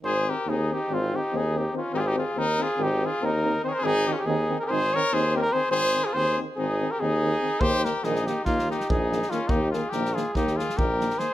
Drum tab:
SD |------------------|------------------|------------------|------------------|
BD |------------------|------------------|------------------|------------------|

SD |--o-ooo-oooo--ooo-|--o-ooo-oooo--ooo-|
BD |o-------o---o-----|o-------o---o-----|